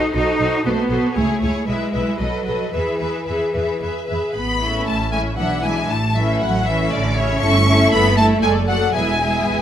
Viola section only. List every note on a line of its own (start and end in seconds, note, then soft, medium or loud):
0.00 0.14 F#4 soft
0.15 0.38 F#4 soft
0.40 0.64 F#4 soft
0.65 0.90 F#4 soft
0.91 1.17 F#4 soft
1.17 1.42 E4 soft
1.43 1.68 E4 soft
1.69 1.93 E4 soft
1.94 2.20 E4 soft
2.21 2.45 A4 soft
2.46 2.73 A4 soft
2.74 2.99 G#4 soft
3.00 3.26 G#4 soft
3.27 3.53 G#4 soft
3.54 3.80 G#4 soft
3.81 4.07 G#4 soft
4.09 4.34 G#4 soft
4.61 5.11 A3 soft
4.61 5.11 C#4 soft
5.13 5.38 A3 soft
5.13 5.38 C#4 soft
5.39 5.64 E3 soft
5.39 5.64 D4 soft
5.65 5.90 E3 soft
5.65 5.90 D4 soft
6.16 6.65 A3 soft
6.16 6.66 C#4 soft
6.66 7.16 A3 soft
6.66 7.17 C#4 soft
7.18 7.41 A3 soft
7.18 7.42 C#4 medium
7.42 7.66 A3 medium
7.42 7.66 E4 medium
7.67 8.16 A3 soft
7.67 8.16 E4 medium
8.17 8.42 A3 medium
8.17 8.43 E4 medium
8.43 8.67 A3 soft
8.43 8.68 A4 soft
8.69 8.95 A3 soft
8.69 8.95 A4 soft
8.95 9.21 B3 soft
8.95 9.21 E4 soft
9.22 9.62 B3 soft
9.22 9.62 E4 soft